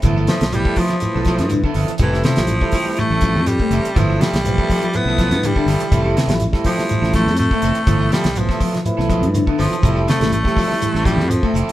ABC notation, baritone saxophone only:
X:1
M:4/4
L:1/8
Q:"Swing 16ths" 1/4=123
K:Gmix
V:1 name="Baritone saxophone" clef=bass
z F, G, F,3 z2 | E, F,3 A,2 G,2 | F, G,3 B,2 G,2- | G, z2 F,2 A, A,2- |
A, G, F, z4 F,- | F, A, A,3 G, F, z |]